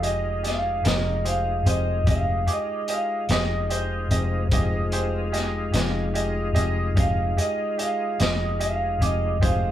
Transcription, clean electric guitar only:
0.07 0.44 D#5 medium
0.48 0.85 F5 medium
0.87 1.25 D#5 medium
1.29 1.66 F5 medium
1.69 2.07 D#5 medium
2.11 2.48 F5 medium
2.53 2.90 D#5 medium
2.94 3.31 F5 medium
3.33 3.71 D#5 medium
3.72 5.30 C5 medium
7.00 7.38 F5 medium
7.42 7.79 D#5 medium
7.83 8.20 F5 medium
8.22 8.60 D#5 medium
8.64 9.02 F5 medium
9.05 9.43 D#5 medium
9.46 9.71 F5 medium

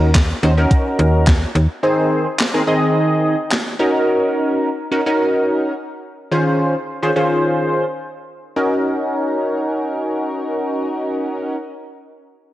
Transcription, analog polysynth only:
0.43 0.52 C#4 medium
0.43 0.52 D#4 medium
0.43 0.52 F#4 medium
0.43 0.52 C5 loud
0.57 1.25 C#4 medium
0.57 1.25 D#4 medium
0.57 1.25 F#4 medium
0.57 1.25 A#4 medium
1.83 2.26 D#3 medium
1.83 2.26 C4 medium
1.83 2.26 D#4 medium
1.83 2.26 G#4 medium
1.83 2.26 C5 loud
2.54 2.62 D#3 medium
2.54 2.62 C4 medium
2.54 2.62 D#4 medium
2.54 2.62 G#4 medium
2.54 2.62 A#4 loud
2.67 3.35 D#3 medium
2.67 3.35 C4 medium
2.67 3.36 D#4 medium
2.67 3.36 G#4 medium
2.67 3.36 D#5 loud
3.79 4.69 C#4 loud
3.79 4.69 D#4 medium
3.79 4.70 F#4 medium
3.79 4.70 A#4 loud
4.91 5.00 C#4 medium
4.91 5.00 D#4 medium
4.91 5.01 F#4 medium
4.91 5.01 A#4 loud
5.06 5.73 C#4 medium
5.06 5.73 D#4 medium
5.06 5.73 F#4 medium
5.06 5.73 A#4 loud
6.31 6.75 D#3 medium
6.31 6.75 C#4 medium
6.31 6.75 F4 medium
6.31 6.75 G#4 medium
6.31 6.75 C5 loud
7.03 7.11 D#3 medium
7.03 7.11 C#4 medium
7.03 7.11 F4 medium
7.03 7.11 G#4 medium
7.03 7.11 C5 loud
7.16 7.84 D#3 medium
7.16 7.84 C#4 medium
7.16 7.84 F4 medium
7.16 7.84 G#4 medium
7.16 7.84 C5 loud
8.56 11.56 C#4 medium
8.56 11.56 D#4 medium
8.56 11.56 F#4 medium
8.56 11.56 A#4 medium

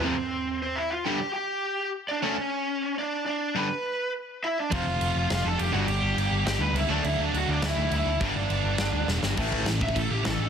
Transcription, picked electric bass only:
4.72 4.82 F1 medium
4.86 4.96 F1 medium
5.00 5.11 F1 medium
5.15 5.25 F1 medium
5.31 5.41 F1 medium
5.45 5.55 F1 loud
5.59 5.69 F1 medium
5.74 5.84 G1 medium
5.88 5.98 G1 medium
6.02 6.12 G1 medium
6.17 6.27 G1 medium
6.31 6.41 G1 medium
6.45 6.56 G1 medium
6.59 6.70 D2 medium
6.73 6.84 C#2 medium
6.89 6.99 D2 medium
7.04 7.14 D2 medium
7.18 7.29 D2 medium
7.33 7.43 D2 medium
7.48 7.58 D2 medium
7.62 7.72 D2 medium
7.77 7.87 D2 loud
7.91 8.01 D2 medium
8.06 8.16 D2 medium
8.21 8.31 G1 loud
8.35 8.45 G1 medium
8.50 8.60 G1 medium
8.64 8.74 G1 medium
8.78 8.89 G1 medium
8.93 9.03 D2 medium
9.07 9.18 E1 medium
9.22 9.33 G1 medium
9.37 9.51 A1 medium
9.53 9.65 A1 medium
9.65 9.80 A1 medium
9.82 9.95 A1 medium
9.96 10.09 A1 medium
10.10 10.24 A1 medium
10.25 10.38 A1 medium
10.39 10.49 A1 medium

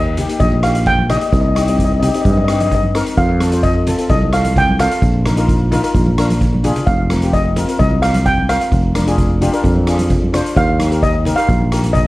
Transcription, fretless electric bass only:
0.00 0.25 D#2 loud
0.40 1.17 A#1 medium
1.33 2.09 C2 medium
2.25 3.02 G2 medium
3.17 3.94 F2 medium
4.10 4.86 C2 medium
5.02 5.79 A#1 loud
5.95 6.71 A#1 medium
6.87 7.63 F1 medium
7.80 8.56 C2 medium
8.72 9.48 F1 loud
9.64 10.40 F2 medium
10.56 11.33 D#2 loud
11.49 12.07 A#1 medium

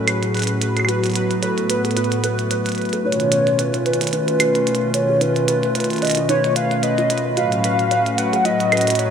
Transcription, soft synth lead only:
0.08 0.61 G#4 loud
0.62 0.90 G#4 medium
0.89 1.44 F#4 loud
1.43 2.78 A4 medium
3.05 3.82 C#5 loud
3.86 4.11 B4 medium
4.13 4.96 B4 medium
4.94 5.23 C#5 medium
5.21 6.04 B4 loud
6.02 6.28 D#5 medium
6.29 6.54 C#5 loud
6.56 6.84 F5 loud
6.83 7.25 D#5 loud
7.37 8.20 F5 loud
8.18 8.46 F#5 loud
8.45 9.00 D#5 loud
8.99 9.10 C#5 medium

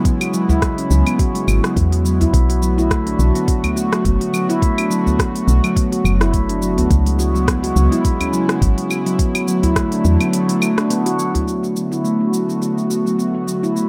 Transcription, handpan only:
0.05 0.19 B3 medium
0.21 0.28 F#4 medium
0.34 0.49 F#3 medium
0.49 0.61 E4 loud
0.62 0.76 G#3 medium
0.78 0.90 C#4 medium
0.91 1.05 F#3 medium
1.07 1.19 B3 medium
1.19 1.33 F#4 medium
1.35 1.47 G#3 medium
1.48 1.62 F#4 medium
1.63 1.76 F#3 medium
1.77 1.91 B3 medium
1.92 2.00 F#4 medium
2.05 2.20 F#3 medium
2.21 2.32 E4 loud
2.34 2.48 B3 medium
2.49 2.57 F#4 medium
2.62 2.77 F#3 medium
2.78 2.90 E4 loud
2.91 3.05 A3 medium
3.07 3.19 D4 medium
3.19 3.34 F#3 medium
3.35 3.47 B3 medium
3.48 3.62 F#4 medium
3.64 3.76 A3 medium
3.76 3.91 F#4 medium
3.92 4.04 F#3 medium
4.05 4.19 B3 medium
4.20 4.28 F#4 medium
4.33 4.48 F#3 medium
4.49 4.61 E4 loud
4.62 4.76 A3 medium
4.78 4.90 D4 medium
4.90 5.05 F#3 medium
5.06 5.18 B3 medium
5.19 5.33 F#4 medium
5.35 5.47 A3 medium
5.48 5.62 F#4 medium
5.64 5.76 F#3 medium
5.76 5.91 B3 medium
5.92 5.99 F#4 medium
6.05 6.20 F#3 medium
6.21 6.32 E4 loud
6.33 6.48 A3 medium
6.49 6.61 D4 medium
6.62 6.76 F#3 medium
6.78 6.90 B3 medium
6.90 7.05 F#4 medium
7.06 7.18 G#3 medium
7.19 7.33 F#4 medium
7.35 7.47 F#3 medium
7.47 7.62 B3 medium
7.63 7.71 F#4 medium
7.76 7.91 F#3 medium
7.92 8.03 E4 loud
8.04 8.19 G#3 medium
8.20 8.33 C#4 medium
8.33 8.48 F#3 medium
8.49 8.61 B3 medium
8.62 8.76 F#4 medium
8.77 8.90 G#3 medium
8.90 9.05 F#4 medium
9.06 9.18 F#3 medium
9.19 9.33 B3 medium
9.35 9.42 F#4 medium
9.48 9.63 F#3 medium
9.63 9.75 E4 loud
9.76 9.91 A3 medium
9.92 10.04 D4 medium
10.05 10.19 F#3 medium
10.21 10.33 B3 medium
10.33 10.48 F#4 medium
10.49 10.61 A3 medium
10.62 10.71 F#4 medium
10.78 10.90 D4 medium
10.90 11.05 B3 loud
11.06 11.18 F#4 loud
11.19 11.33 F#3 medium
11.35 11.42 F#4 medium
11.48 11.62 B3 medium
11.63 11.71 F#4 medium
11.76 11.91 F#3 medium
11.92 12.03 E4 medium
12.04 12.19 A3 medium
12.20 12.33 D4 medium
12.33 12.47 F#3 medium
12.49 12.61 B3 medium
12.62 12.76 F#4 medium
12.77 12.90 A3 medium
12.90 13.05 F#4 medium
13.06 13.18 F#3 medium
13.19 13.33 B3 medium
13.35 13.42 F#4 medium
13.47 13.63 F#3 medium
13.63 13.75 E4 medium
13.76 13.89 A3 medium

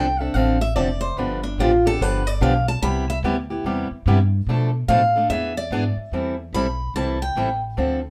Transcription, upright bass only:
0.00 0.34 C2 medium
0.35 0.75 A1 medium
0.75 1.16 F1 medium
1.17 1.57 G1 medium
1.58 1.98 A1 medium
1.99 2.39 G1 medium
2.41 2.81 B1 medium
2.82 3.22 C2 medium
3.23 3.63 D2 loud
3.64 3.89 E2 medium
3.91 muted upright bass stroke soft
4.06 4.46 G2 loud
4.47 4.87 B2 medium
4.88 5.28 A2 medium
5.29 5.70 E2 medium
5.71 5.95 G#2 medium
5.97 muted upright bass stroke soft
6.12 6.52 E2 medium
6.53 6.93 B1 medium
6.94 7.35 C2 medium
7.36 7.76 A1 medium
7.77 8.10 D2 medium

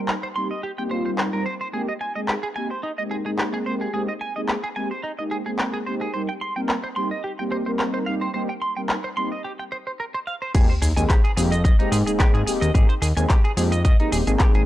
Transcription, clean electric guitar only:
0.08 0.13 A#4 medium
0.23 0.27 C5 medium
0.36 0.47 C6 medium
0.51 0.60 D#5 medium
0.63 0.71 G4 medium
0.78 0.82 G5 medium
0.91 1.02 C5 medium
1.06 1.10 C5 medium
1.18 1.23 C5 medium
1.33 1.43 A#4 medium
1.46 1.53 C5 medium
1.61 1.67 C5 medium
1.73 1.81 G#4 medium
1.88 1.92 D#5 medium
2.01 2.12 G#5 medium
2.15 2.20 D#5 medium
2.28 2.33 G4 medium
2.43 2.47 G#4 medium
2.56 2.67 G#5 medium
2.71 2.80 C5 medium
2.83 2.91 D#4 medium
2.98 3.02 D#5 medium
3.11 3.16 G#4 medium
3.26 3.30 G#4 medium
3.38 3.43 G4 medium
3.54 3.57 G#4 medium
3.66 3.74 C5 medium
3.81 3.91 G#4 medium
3.94 4.01 G#4 medium
4.08 4.12 D#5 medium
4.21 4.32 G#5 medium
4.36 4.40 D#5 medium
4.49 4.53 G4 medium
4.64 4.68 G#4 medium
4.76 4.87 G#5 medium
4.91 5.01 C5 medium
5.03 5.11 D#4 medium
5.19 5.23 D#5 medium
5.31 5.36 G#4 medium
5.46 5.50 G#4 medium
5.59 5.63 G4 medium
5.74 5.78 G#4 medium
5.86 5.94 C5 medium
6.01 6.11 G#4 medium
6.14 6.21 C5 medium
6.29 6.33 G5 medium
6.41 6.53 C6 medium
6.56 6.60 G5 medium
6.69 6.74 A#4 medium
6.84 6.88 C5 medium
6.96 7.08 C6 medium
7.11 7.21 D#5 medium
7.24 7.31 G4 medium
7.39 7.43 G5 medium
7.52 7.56 C5 medium
7.66 7.70 C5 medium
7.79 7.84 A#4 medium
7.94 7.98 C5 medium
8.06 8.14 F5 medium
8.21 8.31 C5 medium
8.34 8.42 C5 medium
8.49 8.53 G5 medium
8.62 8.73 C6 medium
8.76 8.80 G5 medium
8.89 8.94 A#4 medium
9.04 9.08 C5 medium
9.17 9.28 C6 medium
9.32 9.41 D#5 medium
9.44 9.52 G4 medium
9.59 9.63 G5 medium
9.72 9.76 C5 medium
9.87 9.91 C5 medium
10.00 10.04 A#4 medium
10.14 10.18 C5 medium
10.27 10.34 F5 medium
10.42 10.51 C5 medium
10.54 10.66 G#4 medium
10.69 10.73 C5 medium
10.82 10.86 G#4 loud
10.96 11.03 G#5 medium
11.09 11.21 G4 medium
11.24 11.31 G#4 loud
11.37 11.41 G#4 medium
11.52 11.61 D#5 medium
11.64 11.76 D#5 medium
11.79 11.89 D#4 medium
11.92 11.96 G#4 loud
12.06 12.11 G#4 medium
12.19 12.31 G4 medium
12.34 12.41 G#4 loud
12.46 12.51 G#4 medium
12.61 12.71 D#5 medium
12.74 12.86 G#4 medium
12.89 12.93 C5 medium
13.02 13.06 G#4 loud
13.17 13.23 G#5 medium
13.29 13.41 G4 medium
13.44 13.51 G#4 loud
13.57 13.62 G#4 medium
13.72 13.82 D#5 medium
13.85 13.96 D#5 medium
14.00 14.09 D#4 medium
14.12 14.17 G#4 loud
14.27 14.31 G#4 medium
14.40 14.51 G4 medium
14.55 14.61 G#4 loud

